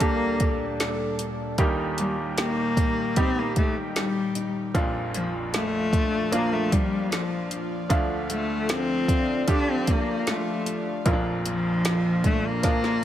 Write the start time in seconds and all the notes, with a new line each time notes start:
Already playing: D2 A#2 D3 G3 A#3 D4 A4
0.00 A#3 D4 G4 A4, kick, closed hi-hat
0.40 D4, kick, closed hi-hat
0.80 A4, snare, closed hi-hat
1.19 D4, closed hi-hat
1.58 D#2 A#2 D#3 G3 A#3 D#4 G4, kick, closed hi-hat
1.98 G3 A#3, closed hi-hat
2.38 A#3 G4, snare, closed hi-hat
2.77 D#4, kick, closed hi-hat
3.16 G3 C4 D#4 G4, kick, closed hi-hat
3.39 A#3
3.56 A3 D#4, kick, closed hi-hat
3.96 G3 G4, snare, closed hi-hat
4.35 D#4, closed hi-hat
4.74 A#1 F2 A#2 F3 D4 F4, kick, closed hi-hat
5.14 F3 A#3, closed hi-hat
5.54 A3 F4, snare, closed hi-hat
5.93 D4, kick, closed hi-hat
6.32 F3 A#3 D4 F4, closed hi-hat
6.52 A3
6.72 G3 D4, kick, closed hi-hat
7.11 F3 F4, snare, closed hi-hat
7.51 D4, closed hi-hat
7.89 D2 D3 F3 A3 D4 F4, kick, closed hi-hat
8.30 A3, closed hi-hat
8.69 C4 F4, snare, closed hi-hat
9.08 D4, kick, closed hi-hat
9.47 F3 D4 F4 G4 A4, kick, closed hi-hat
9.71 C4
9.87 A#3 D4, kick, closed hi-hat
10.27 A3 F4, snare, closed hi-hat
10.66 D4, closed hi-hat
11.05 A#1 F2 A#2 F3 A#3 C4 D4 F4, kick, closed hi-hat
11.13 D4
11.46 F3 A#3, closed hi-hat
11.85 F4, snare, closed hi-hat
12.24 A3 D4, kick, closed hi-hat
12.46 A#3
12.63 F3 A#3 D4 F4, kick, snare, closed hi-hat
12.84 snare